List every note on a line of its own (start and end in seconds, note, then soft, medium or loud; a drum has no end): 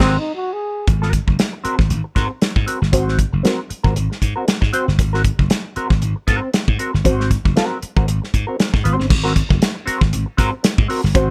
0.00 0.16 G#1 loud
0.00 0.12 D#3 loud
0.00 0.12 C4 medium
0.00 0.20 C4 loud
0.00 0.17 C4 loud
0.00 0.16 F#4 loud
0.00 0.12 G#4 medium
0.00 0.16 A#4 loud
0.00 snare loud
0.00 crash medium
0.18 0.34 D#4 medium
0.35 0.55 F#4 medium
0.53 0.87 G#4 medium
0.87 1.18 G#1 medium
0.87 muted clean electric guitar stroke soft
0.87 kick loud
0.87 closed hi-hat medium
1.02 1.12 C4 medium
1.02 1.13 F#4 medium
1.02 1.14 A#4 medium
1.02 snare soft
1.13 muted clean electric guitar stroke soft
1.13 kick medium
1.13 closed hi-hat medium
1.27 1.36 F#1 medium
1.27 muted clean electric guitar stroke soft
1.27 kick medium
1.39 snare loud
1.39 closed hi-hat medium
1.53 muted clean electric guitar stroke soft
1.64 1.79 C4 medium
1.64 1.78 F#4 medium
1.64 1.77 A#4 medium
1.64 muted slap bass stroke soft
1.64 closed hi-hat medium
1.78 1.87 G#1 medium
1.78 muted clean electric guitar stroke soft
1.78 kick medium
1.78 snare soft
1.90 2.01 G#1 medium
1.90 closed hi-hat medium
2.04 muted clean electric guitar stroke medium
2.15 2.27 G#2 medium
2.15 2.30 C4 medium
2.15 2.29 F#4 medium
2.15 2.28 A#4 medium
2.15 kick medium
2.15 snare soft
2.15 closed hi-hat soft
2.29 muted clean electric guitar stroke soft
2.41 muted clean electric guitar stroke soft
2.41 snare loud
2.41 closed hi-hat medium
2.56 2.65 G#2 medium
2.56 kick medium
2.66 2.78 C4 medium
2.66 2.79 F#4 medium
2.66 2.79 A#4 medium
2.66 closed hi-hat medium
2.80 2.93 G1 medium
2.80 muted clean electric guitar stroke soft
2.80 snare soft
2.92 3.23 G#1 medium
2.92 3.17 C4 medium
2.92 3.17 F#4 medium
2.92 3.17 C5 loud
2.92 kick medium
2.92 closed hi-hat medium
3.08 snare soft
3.19 kick medium
3.19 closed hi-hat medium
3.33 3.42 F#1 medium
3.33 muted clean electric guitar stroke soft
3.43 3.58 C4 medium
3.43 3.59 F#4 medium
3.43 3.59 A#4 medium
3.43 snare loud
3.43 closed hi-hat medium
3.69 muted clean electric guitar stroke soft
3.69 muted slap bass stroke soft
3.69 closed hi-hat medium
3.84 3.93 G#1 medium
3.84 3.94 C4 soft
3.84 3.94 F#4 medium
3.84 3.93 A#4 medium
3.84 kick medium
3.96 4.07 G#1 medium
3.96 muted clean electric guitar stroke soft
3.96 closed hi-hat medium
4.10 muted clean electric guitar stroke soft
4.10 snare soft
4.22 4.33 G#2 loud
4.22 kick medium
4.22 closed hi-hat medium
4.36 4.46 C4 medium
4.36 4.46 F#4 medium
4.36 4.46 A#4 medium
4.48 snare loud
4.48 closed hi-hat medium
4.61 4.70 G#2 medium
4.61 muted clean electric guitar stroke soft
4.61 kick medium
4.61 snare soft
4.73 4.88 C4 medium
4.73 4.87 F#4 loud
4.73 4.87 C5 loud
4.73 closed hi-hat medium
4.88 4.99 G1 medium
4.88 muted clean electric guitar stroke soft
4.88 snare soft
4.99 5.29 G#1 medium
4.99 muted clean electric guitar stroke soft
4.99 kick loud
4.99 closed hi-hat medium
5.13 5.23 C4 medium
5.13 5.23 F#4 medium
5.13 5.24 A#4 medium
5.13 snare soft
5.24 kick medium
5.24 closed hi-hat medium
5.39 5.48 F#1 medium
5.39 muted clean electric guitar stroke soft
5.39 kick medium
5.50 snare loud
5.50 closed hi-hat medium
5.65 muted clean electric guitar stroke soft
5.76 5.91 C4 medium
5.76 5.90 F#4 medium
5.76 5.89 A#4 medium
5.76 muted slap bass stroke soft
5.76 closed hi-hat medium
5.90 5.99 G#1 medium
5.90 muted clean electric guitar stroke soft
5.90 kick medium
5.90 snare soft
6.02 6.13 G#1 medium
6.02 closed hi-hat medium
6.16 muted clean electric guitar stroke soft
6.27 6.39 G#2 loud
6.27 6.48 C4 medium
6.27 6.42 F#4 medium
6.27 6.41 A#4 medium
6.27 kick medium
6.27 snare soft
6.27 closed hi-hat medium
6.42 muted clean electric guitar stroke soft
6.53 muted clean electric guitar stroke soft
6.53 snare medium
6.53 closed hi-hat medium
6.68 6.77 G#2 medium
6.68 kick medium
6.79 6.90 C4 medium
6.79 6.91 F#4 medium
6.79 6.91 A#4 medium
6.79 closed hi-hat medium
6.94 7.03 G1 medium
6.94 muted clean electric guitar stroke soft
6.94 snare soft
7.04 7.35 G#1 loud
7.04 7.29 C4 medium
7.04 7.29 F#4 medium
7.04 7.29 C5 medium
7.04 kick medium
7.04 closed hi-hat medium
7.20 snare soft
7.31 kick medium
7.31 closed hi-hat medium
7.45 7.54 F#1 medium
7.45 muted clean electric guitar stroke soft
7.45 kick medium
7.56 7.77 C4 medium
7.56 7.77 F#4 medium
7.56 7.78 A#4 medium
7.56 snare loud
7.56 closed hi-hat medium
7.83 muted clean electric guitar stroke soft
7.83 muted slap bass stroke soft
7.83 closed hi-hat medium
7.96 8.05 G#1 medium
7.96 8.06 C4 medium
7.96 8.06 F#4 medium
7.96 8.05 A#4 medium
7.96 kick medium
8.08 8.19 G#1 medium
8.08 muted clean electric guitar stroke soft
8.08 closed hi-hat medium
8.22 muted clean electric guitar stroke soft
8.22 snare soft
8.34 8.44 G#2 medium
8.34 kick medium
8.34 closed hi-hat medium
8.47 8.57 C4 medium
8.47 8.58 F#4 medium
8.47 8.58 A#4 medium
8.58 muted clean electric guitar stroke soft
8.58 snare loud
8.58 closed hi-hat medium
8.73 8.82 G#2 medium
8.73 muted clean electric guitar stroke soft
8.73 kick medium
8.73 snare soft
8.84 8.96 G#1 medium
8.84 9.05 C4 medium
8.84 8.98 F#4 medium
8.84 8.97 C5 medium
8.84 closed hi-hat medium
8.98 9.08 G1 medium
8.98 muted clean electric guitar stroke soft
8.98 snare soft
9.09 9.41 G#1 loud
9.09 muted clean electric guitar stroke soft
9.09 kick loud
9.09 crash loud
9.23 9.34 C4 medium
9.23 9.34 F#4 medium
9.23 9.35 A#4 medium
9.23 snare soft
9.36 kick medium
9.36 closed hi-hat medium
9.49 9.59 F#1 medium
9.49 muted clean electric guitar stroke soft
9.49 kick medium
9.62 snare loud
9.62 closed hi-hat medium
9.75 muted clean electric guitar stroke soft
9.86 10.01 C4 medium
9.86 10.01 F#4 medium
9.86 9.99 A#4 medium
9.86 muted slap bass stroke medium
9.86 closed hi-hat medium
10.01 10.10 G#1 loud
10.01 muted clean electric guitar stroke soft
10.01 kick loud
10.01 snare soft
10.13 10.24 G#1 medium
10.13 closed hi-hat medium
10.26 muted clean electric guitar stroke soft
10.37 10.49 G#2 loud
10.37 10.52 C4 medium
10.37 10.52 F#4 medium
10.37 10.51 A#4 medium
10.37 kick medium
10.37 snare soft
10.37 closed hi-hat medium
10.52 muted clean electric guitar stroke medium
10.63 muted clean electric guitar stroke soft
10.63 snare loud
10.63 closed hi-hat medium
10.78 10.87 G#2 loud
10.78 kick loud
10.88 11.00 C4 medium
10.88 11.01 F#4 medium
10.88 11.01 A#4 medium
10.88 open hi-hat medium
11.04 11.15 G1 medium
11.04 snare soft
11.14 11.30 G#1 loud
11.14 11.30 C4 loud
11.14 11.30 F#4 medium
11.14 11.30 C5 loud
11.14 kick loud
11.14 closed hi-hat loud